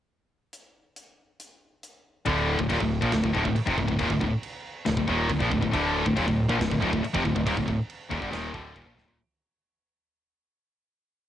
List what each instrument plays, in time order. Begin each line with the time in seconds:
0.53 closed hi-hat
0.96 closed hi-hat
1.40 closed hi-hat
1.83 closed hi-hat
2.25 picked electric bass D1, distorted electric guitar D2 A2 D3, kick, crash
2.58 picked electric bass D1, distorted electric guitar D2 A2, kick
2.69 picked electric bass D#1, distorted electric guitar D#2 A#2, kick, crash
2.80 picked electric bass D1, distorted electric guitar D2 A2, kick
3.01 picked electric bass A#1, distorted electric guitar A#2 F3, kick
3.12 picked electric bass D1, distorted electric guitar D2 A2, snare, crash
3.23 picked electric bass D1, distorted electric guitar D2 A2, kick
3.33 picked electric bass D1, distorted electric guitar D2 A2, kick
3.44 picked electric bass D1, distorted electric guitar D2 A2, kick
3.55 muted distorted electric guitar stroke, muted picked electric bass stroke, crash
3.66 picked electric bass F1, distorted electric guitar F2 C3, kick
3.77 picked electric bass D1, distorted electric guitar D2 A2, kick
3.87 picked electric bass D1, distorted electric guitar D2 A2, kick
3.91 distorted electric guitar D2
3.98 picked electric bass D#1, distorted electric guitar D#2 A#2, kick, crash
4.03 distorted electric guitar D#2 A#2
4.10 picked electric bass D1, distorted electric guitar D2 A2, kick
4.20 picked electric bass D1, distorted electric guitar D2 A2, kick
4.43 crash
4.85 picked electric bass D1, distorted electric guitar D2 A2, snare, crash
4.97 picked electric bass D1, distorted electric guitar D2 A2, kick
5.07 picked electric bass D#1, distorted electric guitar D#2 A#2 D#3, kick
5.29 picked electric bass D1, distorted electric guitar D2 A2, kick, crash
5.39 picked electric bass A#1, distorted electric guitar A#2 F3, kick
5.51 picked electric bass D1, distorted electric guitar D2 A2, kick
5.61 picked electric bass D1, distorted electric guitar D2 A2, kick
5.71 picked electric bass D1, distorted electric guitar D2 A2 D3, kick, crash
6.05 picked electric bass D1, distorted electric guitar D2 A2, kick
6.15 picked electric bass D#1, distorted electric guitar D#2 A#2, kick, crash
6.27 picked electric bass D1, distorted electric guitar D2 A2, kick
6.49 picked electric bass A#1, distorted electric guitar A#2 F3, kick
6.60 picked electric bass D1, distorted electric guitar D2 A2, snare, crash
6.71 picked electric bass D1, distorted electric guitar D2 A2, kick
6.81 picked electric bass D1, distorted electric guitar D2 A2, kick
6.93 picked electric bass D1, distorted electric guitar D2 A2, kick
7.03 muted distorted electric guitar stroke, muted picked electric bass stroke, crash
7.14 picked electric bass F1, distorted electric guitar F2 C3, kick
7.25 picked electric bass D1, distorted electric guitar D2 A2, kick
7.36 picked electric bass D1, distorted electric guitar D2 A2, kick
7.46 picked electric bass D#1, distorted electric guitar D#2 A#2, kick, crash
7.57 picked electric bass D1, distorted electric guitar D2 A2, kick
7.68 picked electric bass D1, distorted electric guitar D2 A2, kick
7.90 crash
8.10 picked electric bass D#1, distorted electric guitar D#2 A#2, kick
8.21 picked electric bass G1, distorted electric guitar G2 D3, kick
8.31 picked electric bass D#1, distorted electric guitar D#2 A#2 D#3, snare, crash
8.53 picked electric bass D1, distorted electric guitar D2 A2 D3, kick
8.75 picked electric bass D#1, distorted electric guitar D#2 A#2, kick, crash
8.85 picked electric bass A#1, distorted electric guitar A#2 F3
8.96 picked electric bass D1, distorted electric guitar D2 A2, snare
9.07 picked electric bass D#1, distorted electric guitar D#2 A#2, floor tom